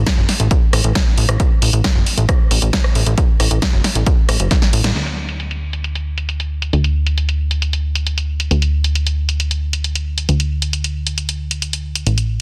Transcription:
0.06 kick, snare, closed hi-hat
0.18 F#1
0.29 snare, open hi-hat
0.40 A1, closed hi-hat
0.51 kick, closed hi-hat
0.73 A1, cross-stick, open hi-hat
0.84 A1, closed hi-hat
0.95 kick, snare, closed hi-hat
1.18 A1, open hi-hat
1.29 A1, cross-stick, closed hi-hat
1.40 kick, closed hi-hat
1.62 A1, open hi-hat
1.73 A1, closed hi-hat
1.84 kick, snare, closed hi-hat
1.95 F#1
2.06 open hi-hat
2.18 A1, closed hi-hat
2.29 kick, cross-stick, closed hi-hat
2.51 A1, open hi-hat
2.62 A1, closed hi-hat
2.73 kick, snare, closed hi-hat
2.84 cross-stick
2.95 A1, open hi-hat
3.06 A1, closed hi-hat
3.18 kick, closed hi-hat
3.40 A1, cross-stick, open hi-hat
3.51 A1, closed hi-hat
3.62 kick, snare, closed hi-hat
3.73 F#1
3.84 snare, open hi-hat
3.95 A1, closed hi-hat
4.06 kick, closed hi-hat
4.29 A1, cross-stick, open hi-hat
4.40 F#1, closed hi-hat
4.51 kick, snare, closed hi-hat
4.62 snare
4.73 A1, open hi-hat
4.84 A1, snare, closed hi-hat
4.95 D2, closed hi-hat, crash
5.07 closed hi-hat
5.29 closed hi-hat
5.40 closed hi-hat
5.51 closed hi-hat
5.73 closed hi-hat
5.84 closed hi-hat
5.95 closed hi-hat
6.18 closed hi-hat
6.29 closed hi-hat
6.40 closed hi-hat
6.62 closed hi-hat
6.73 D2, closed hi-hat
6.84 closed hi-hat
7.07 closed hi-hat
7.18 closed hi-hat
7.29 closed hi-hat
7.51 closed hi-hat
7.62 closed hi-hat
7.73 closed hi-hat
7.95 closed hi-hat
8.07 closed hi-hat
8.18 closed hi-hat
8.40 closed hi-hat
8.51 D2, closed hi-hat
8.62 closed hi-hat
8.84 closed hi-hat
8.95 closed hi-hat
9.07 closed hi-hat
9.29 closed hi-hat
9.40 closed hi-hat
9.51 closed hi-hat
9.73 closed hi-hat
9.84 closed hi-hat
9.95 closed hi-hat
10.18 closed hi-hat
10.29 D2, closed hi-hat
10.40 closed hi-hat
10.62 closed hi-hat
10.73 closed hi-hat
10.84 closed hi-hat
11.07 closed hi-hat
11.18 closed hi-hat
11.29 closed hi-hat
11.51 closed hi-hat
11.62 closed hi-hat
11.73 closed hi-hat
11.95 closed hi-hat
12.07 A1, closed hi-hat
12.18 closed hi-hat

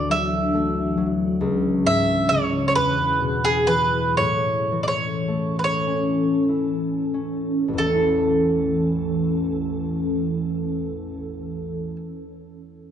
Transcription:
Already playing: D2 D3 E3 A3 D4 E4 F#4 D5
0.09 F#3 E5
0.54 A3
0.97 F#3
1.41 C#2
1.84 G#2 E5
2.29 C#3 C#5
2.68 C#5
2.75 E2 B4
3.20 B2
3.45 G#4
3.67 E3 B4
4.17 A2 E3 C#4 A4 C#5
4.72 E3
4.83 D5
4.88 C#5
5.28 A3
5.59 B4
5.64 C#5
5.87 C#4
6.48 E4
7.14 C#4
7.68 A1
7.73 E2
7.78 E3 C#4 A4
7.84 A3
7.89 C#4
7.95 E4

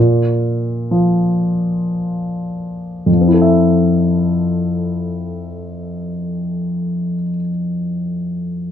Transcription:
Already playing: A#2
0.91 F3
3.06 F2
3.13 F3
3.21 C4
3.28 E4
3.34 A4
3.42 E5

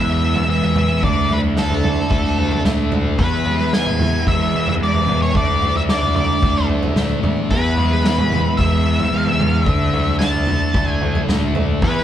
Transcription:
Already playing: E2 B2 E3 G#3 B3 E4 G#4 B4 E5
0.23 B3
0.36 floor tom, high conga
0.49 E3 G#3 E5
0.62 floor tom
0.76 B3, floor tom, mid tom, low conga
1.02 D2 D3 D4 A4 D5 E5, kick, floor tom
1.29 A3 B4, floor tom
1.44 high conga
1.57 D4 A4, snare
1.70 floor tom
1.84 D3, floor tom, high conga, low conga
2.10 D2 A3, kick, floor tom
2.37 D4, floor tom
2.51 floor tom, high conga
2.65 D2 A3, snare, mid tom
2.92 D4, floor tom, mid tom, low conga
3.18 E2 B3 G#4 B4, kick, floor tom
3.46 G#3, floor tom
3.60 high conga
3.73 B3 G#5, snare
3.86 floor tom, mid tom
3.99 E3, floor tom, high conga, low conga
4.26 E2 G#3 E5, kick, floor tom
4.54 B3
4.67 E5, floor tom, high conga
4.80 E2 G#3 D5
4.94 floor tom
5.07 B3, floor tom, mid tom, low conga
5.22 C#5
5.34 D2 D3 D4 E4 A4 D5 E5, kick, floor tom
5.62 A3, floor tom
5.76 E5, high conga
5.89 D4 D5, snare
6.02 floor tom, low conga
6.15 D3 D5, floor tom, high conga, low conga
6.42 D2 A3, kick, floor tom
6.69 D4, floor tom
6.83 floor tom, high conga
6.96 D2 A3, snare, mid tom
7.10 high conga
7.23 E2 D4, floor tom, mid tom, low conga
7.36 high conga
7.50 E2 B3 G#4 B4, kick, floor tom
7.77 G#3, floor tom
7.91 high conga
8.05 B3, snare
8.18 floor tom, mid tom
8.32 E3, floor tom, high conga, low conga
8.57 E2 G#3 E5, kick, floor tom
8.86 B3
8.99 floor tom, high conga
9.12 E2 G#3 F5
9.26 E5, floor tom
9.40 B3, floor tom, mid tom, low conga
9.45 F5
9.60 E5
9.65 D2 D3 D4 E4 A4 D5, kick, floor tom
9.93 A3, floor tom
10.08 high conga
10.19 D4 A5, snare
10.34 floor tom
10.47 D3, floor tom, high conga, low conga
10.74 D2 A3, kick, floor tom
10.89 G#5
11.01 D4, floor tom
11.15 floor tom, high conga
11.28 D2 A3, snare, mid tom
11.55 D4, floor tom, mid tom, low conga
11.81 E2 B3 G#4 B4, kick, floor tom

